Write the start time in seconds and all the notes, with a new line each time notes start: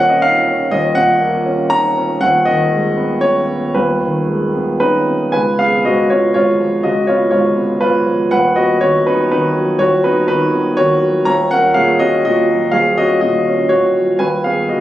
Already playing: D#1 D#2 A#2 A#3 C#4 D#5 F#5
0.09 D#5
0.22 D#4 F5
0.47 C#4
0.71 D#1 D#2 D#5
0.95 A#2 F#5
1.21 A#3
1.46 C#4
1.70 D#4 A#5
1.97 C#4
2.20 D#1 D#2 F#5
2.45 D#3 D#5
2.72 G#3
2.97 B3
3.21 C#4 C#5
3.49 B3
3.74 D#1 D#2 B4
4.01 D#3
4.28 G#3
4.55 B3
4.80 C#4 D#4 B4
5.08 B3
5.32 C#2 B4 G#5
5.59 B3 G#4 F5
5.85 G#2 F#4 D#5
6.10 B3 F4 C#5
6.34 G#2 F4 C#5
6.60 F3
6.83 C#2 F#4 D#5
7.07 B3 F4 C#5
7.31 G#2 F4 C#5
7.57 B3
7.81 G#2 F4 B4
8.06 F3
8.31 D#1 D#2 B4 F#5
8.56 B3 F#4 D#5
8.81 D#3 F#4 C#5
9.07 B3 D#4 B4
9.31 D#3 D#4 B4
9.57 F#3
9.79 D#1 D#2 F#4 C#5
10.04 B3 D#4 B4
10.28 D#3 D#4 B4
10.53 B3
10.77 D#3 F#4 C#5
11.02 F#3
11.25 D#1 D#2 C#5 A#5
11.51 C#4 A#4 F#5
11.74 A#2 G#4 F5
11.99 C#4 F#4 D#5
12.25 A#2 F#4 D#5
12.49 F#3
12.71 D#1 D#2 G#4 F5
12.98 C#4 F#4 D#5
13.21 A#2 F#4 D#5
13.47 C#4
13.69 A#2 F#4 C#5
13.95 F#3
14.18 D#1 D#2 B4 G#5
14.44 B3 G#4 F5
14.69 D#3 F#4 D#5